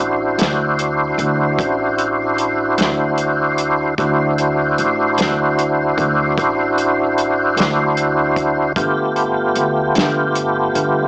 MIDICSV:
0, 0, Header, 1, 4, 480
1, 0, Start_track
1, 0, Tempo, 797872
1, 2396, Time_signature, 12, 3, 24, 8
1, 6664, End_track
2, 0, Start_track
2, 0, Title_t, "Tonewheel organ"
2, 0, Program_c, 0, 16
2, 0, Note_on_c, 0, 62, 57
2, 0, Note_on_c, 0, 64, 54
2, 0, Note_on_c, 0, 66, 60
2, 0, Note_on_c, 0, 72, 60
2, 2373, Note_off_c, 0, 62, 0
2, 2374, Note_off_c, 0, 64, 0
2, 2374, Note_off_c, 0, 66, 0
2, 2374, Note_off_c, 0, 72, 0
2, 2395, Note_on_c, 0, 72, 60
2, 2398, Note_on_c, 0, 66, 56
2, 2399, Note_on_c, 0, 62, 55
2, 2399, Note_on_c, 0, 64, 58
2, 5249, Note_off_c, 0, 72, 0
2, 5250, Note_off_c, 0, 62, 0
2, 5250, Note_off_c, 0, 66, 0
2, 5251, Note_off_c, 0, 64, 0
2, 5271, Note_on_c, 0, 57, 54
2, 5273, Note_on_c, 0, 65, 61
2, 5273, Note_on_c, 0, 67, 56
2, 5276, Note_on_c, 0, 59, 56
2, 6664, Note_off_c, 0, 57, 0
2, 6664, Note_off_c, 0, 59, 0
2, 6664, Note_off_c, 0, 65, 0
2, 6664, Note_off_c, 0, 67, 0
2, 6664, End_track
3, 0, Start_track
3, 0, Title_t, "Upright bass"
3, 0, Program_c, 1, 32
3, 0, Note_on_c, 1, 33, 74
3, 211, Note_off_c, 1, 33, 0
3, 230, Note_on_c, 1, 38, 78
3, 688, Note_off_c, 1, 38, 0
3, 708, Note_on_c, 1, 38, 87
3, 932, Note_off_c, 1, 38, 0
3, 955, Note_on_c, 1, 33, 89
3, 1651, Note_off_c, 1, 33, 0
3, 1672, Note_on_c, 1, 38, 79
3, 2370, Note_off_c, 1, 38, 0
3, 2398, Note_on_c, 1, 38, 83
3, 2853, Note_off_c, 1, 38, 0
3, 2880, Note_on_c, 1, 33, 73
3, 3099, Note_off_c, 1, 33, 0
3, 3114, Note_on_c, 1, 38, 78
3, 3571, Note_off_c, 1, 38, 0
3, 3595, Note_on_c, 1, 38, 87
3, 3816, Note_off_c, 1, 38, 0
3, 3836, Note_on_c, 1, 33, 78
3, 4531, Note_off_c, 1, 33, 0
3, 4548, Note_on_c, 1, 38, 69
3, 5246, Note_off_c, 1, 38, 0
3, 5271, Note_on_c, 1, 31, 79
3, 5727, Note_off_c, 1, 31, 0
3, 5751, Note_on_c, 1, 38, 67
3, 5971, Note_off_c, 1, 38, 0
3, 5989, Note_on_c, 1, 31, 73
3, 6444, Note_off_c, 1, 31, 0
3, 6468, Note_on_c, 1, 31, 78
3, 6664, Note_off_c, 1, 31, 0
3, 6664, End_track
4, 0, Start_track
4, 0, Title_t, "Drums"
4, 232, Note_on_c, 9, 42, 70
4, 249, Note_on_c, 9, 38, 88
4, 293, Note_off_c, 9, 42, 0
4, 309, Note_off_c, 9, 38, 0
4, 474, Note_on_c, 9, 42, 57
4, 534, Note_off_c, 9, 42, 0
4, 714, Note_on_c, 9, 42, 51
4, 774, Note_off_c, 9, 42, 0
4, 954, Note_on_c, 9, 36, 86
4, 955, Note_on_c, 9, 42, 72
4, 1014, Note_off_c, 9, 36, 0
4, 1015, Note_off_c, 9, 42, 0
4, 1193, Note_on_c, 9, 42, 54
4, 1253, Note_off_c, 9, 42, 0
4, 1434, Note_on_c, 9, 42, 54
4, 1494, Note_off_c, 9, 42, 0
4, 1673, Note_on_c, 9, 42, 68
4, 1689, Note_on_c, 9, 38, 89
4, 1733, Note_off_c, 9, 42, 0
4, 1750, Note_off_c, 9, 38, 0
4, 1912, Note_on_c, 9, 42, 48
4, 1972, Note_off_c, 9, 42, 0
4, 2154, Note_on_c, 9, 42, 54
4, 2214, Note_off_c, 9, 42, 0
4, 2395, Note_on_c, 9, 42, 67
4, 2396, Note_on_c, 9, 36, 97
4, 2455, Note_off_c, 9, 42, 0
4, 2456, Note_off_c, 9, 36, 0
4, 2638, Note_on_c, 9, 42, 53
4, 2698, Note_off_c, 9, 42, 0
4, 2878, Note_on_c, 9, 42, 50
4, 2938, Note_off_c, 9, 42, 0
4, 3116, Note_on_c, 9, 42, 67
4, 3132, Note_on_c, 9, 38, 93
4, 3176, Note_off_c, 9, 42, 0
4, 3193, Note_off_c, 9, 38, 0
4, 3361, Note_on_c, 9, 42, 52
4, 3421, Note_off_c, 9, 42, 0
4, 3597, Note_on_c, 9, 36, 68
4, 3599, Note_on_c, 9, 42, 49
4, 3657, Note_off_c, 9, 36, 0
4, 3659, Note_off_c, 9, 42, 0
4, 3836, Note_on_c, 9, 36, 90
4, 3837, Note_on_c, 9, 42, 64
4, 3896, Note_off_c, 9, 36, 0
4, 3897, Note_off_c, 9, 42, 0
4, 4078, Note_on_c, 9, 42, 47
4, 4139, Note_off_c, 9, 42, 0
4, 4318, Note_on_c, 9, 42, 49
4, 4379, Note_off_c, 9, 42, 0
4, 4555, Note_on_c, 9, 42, 68
4, 4572, Note_on_c, 9, 38, 94
4, 4615, Note_off_c, 9, 42, 0
4, 4632, Note_off_c, 9, 38, 0
4, 4794, Note_on_c, 9, 42, 50
4, 4854, Note_off_c, 9, 42, 0
4, 5032, Note_on_c, 9, 36, 62
4, 5033, Note_on_c, 9, 42, 56
4, 5092, Note_off_c, 9, 36, 0
4, 5094, Note_off_c, 9, 42, 0
4, 5271, Note_on_c, 9, 36, 95
4, 5273, Note_on_c, 9, 42, 74
4, 5331, Note_off_c, 9, 36, 0
4, 5333, Note_off_c, 9, 42, 0
4, 5512, Note_on_c, 9, 42, 58
4, 5572, Note_off_c, 9, 42, 0
4, 5748, Note_on_c, 9, 42, 52
4, 5809, Note_off_c, 9, 42, 0
4, 5988, Note_on_c, 9, 42, 69
4, 6005, Note_on_c, 9, 38, 92
4, 6048, Note_off_c, 9, 42, 0
4, 6065, Note_off_c, 9, 38, 0
4, 6230, Note_on_c, 9, 42, 56
4, 6290, Note_off_c, 9, 42, 0
4, 6469, Note_on_c, 9, 42, 53
4, 6530, Note_off_c, 9, 42, 0
4, 6664, End_track
0, 0, End_of_file